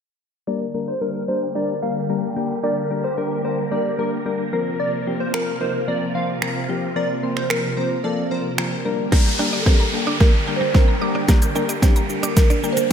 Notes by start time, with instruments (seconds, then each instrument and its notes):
0.47 string machine D3 G3 A#3 G4 A#4, synth keys G3 A#3 D4 A#4, digital synth lead D5
0.74 synth keys G3 A#3 D4 A#4
0.88 digital synth lead C5
1.01 synth keys G3 A#3 D4 A#4, digital synth lead A#4
1.28 synth keys G3 A#3 D4 A#4, digital synth lead C5
1.55 synth keys G3 A#3 D4 A#4, digital synth lead D5
1.82 synth keys G3 A#3 D4 A#4, digital synth lead F5
2.09 synth keys G3 A#3 D4 A#4
2.36 synth keys G3 A#3 D4 G4
2.63 synth keys G3 A#3 D4 A#4, digital synth lead D5
2.90 synth keys G3 A#3 D4 A#4
3.04 digital synth lead C5
3.17 synth keys G3 A#3 D4 A#4, digital synth lead A#4
3.44 synth keys G3 A#3 D4 A#4, digital synth lead C5
3.72 synth keys G3 A#3 D4 A#4, digital synth lead D5
3.99 synth keys G3 A#3 D4 A#4, digital synth lead A#4
4.26 synth keys G3 A#3 D4 A#4
4.53 string machine C3 F3 F4, synth keys F3 A#3 C4 A#4
4.80 digital synth lead D5
5.07 synth keys F3 A#3 C4 G4
5.20 digital synth lead C5
5.34 synth keys F3 A#3 C4 A#4, digital synth lead A#4, finger snap
5.61 synth keys F3 A#3 C4 D#4, digital synth lead C5
5.88 synth keys F3 A#3 C4 A#4, digital synth lead D5
6.15 synth keys F3 A#3 C4 C5, digital synth lead F5
6.42 synth keys F3 A#3 C4 A#4, finger snap
6.69 synth keys F3 A#3 C4 G4
6.96 synth keys F3 A#3 C4 A#4, digital synth lead D5
7.23 synth keys F3 A#3 C4 C5
7.36 digital synth lead C5, finger snap
7.50 synth keys F3 A#3 C4 A#4, digital synth lead A#4, finger snap
7.77 synth keys F3 A#3 C4 A#4, digital synth lead C5
8.04 synth keys F3 A#3 C4 A4, digital synth lead D5
8.31 synth keys F3 A#3 C4 A#4, digital synth lead C5
8.58 synth keys F3 A#3 C4 A#4, finger snap
8.85 synth keys G3 A#3 D4 A#4
9.12 string machine D3 G3 A#3 G4 A#4, synth keys G3 A#3 D4 A#4, clean electric guitar A#3, synth arpeggio sound G4, kick, snare, crash, downlifter, riser
9.26 synth arpeggio sound G4
9.39 synth keys G3 A#3 D4 A#4, clean electric guitar D4, synth arpeggio sound G5
9.53 synth arpeggio sound D5, muted clean electric guitar stroke
9.59 marimba A4
9.66 synth keys G3 A#3 D4 A#4, clean electric guitar C4, synth arpeggio sound G4, marimba G4, kick, snare
9.80 synth arpeggio sound A#5, muted clean electric guitar stroke
9.93 synth keys G3 A#3 D4 A4
10.07 clean electric guitar D4, synth arpeggio sound D6
10.20 synth keys G3 A#3 D4 A#4, clean electric guitar A#3, synth arpeggio sound G4, marimba A#4, kick, snare
10.34 muted clean electric guitar stroke
10.47 synth keys G3 A#3 D4 A#4, synth arpeggio sound G5
10.56 marimba C5
10.61 clean electric guitar A#3
10.74 synth keys G3 A#3 D4 A#4, clean electric guitar C4, marimba A#4, kick, snare
10.88 synth arpeggio sound A#5
11.01 synth keys G3 A#3 D4 A#4, synth arpeggio sound D6, muted clean electric guitar stroke
11.15 clean electric guitar D4, synth arpeggio sound D5
11.28 synth keys G3 A#3 D4 A#4, clean electric guitar A#3, synth arpeggio sound G4, kick, snare, closed hi-hat, shaker
11.42 synth arpeggio sound G4, closed hi-hat, shaker
11.55 synth keys G3 A#3 D4 A#4, clean electric guitar D4, synth arpeggio sound G5, shaker
11.69 synth arpeggio sound D5, muted clean electric guitar stroke, closed hi-hat, shaker
11.82 synth keys G3 A#3 D4 A#4, clean electric guitar C4, marimba G4, synth arpeggio sound G4, kick, snare, closed hi-hat, shaker
11.96 synth arpeggio sound A#5, muted clean electric guitar stroke, closed hi-hat, shaker
12.09 synth keys G3 A#3 D4 G4, shaker
12.23 clean electric guitar D4, synth arpeggio sound D6, closed hi-hat, shaker
12.36 synth keys G3 A#3 D4 A#4, synth arpeggio sound G4, marimba A#4, kick, snare, closed hi-hat, shaker
12.50 clean electric guitar D4, closed hi-hat, shaker
12.63 synth keys G3 A#3 D4 A#4, synth arpeggio sound G5, muted clean electric guitar stroke, shaker
12.73 marimba C5
12.77 clean electric guitar A#3, closed hi-hat, shaker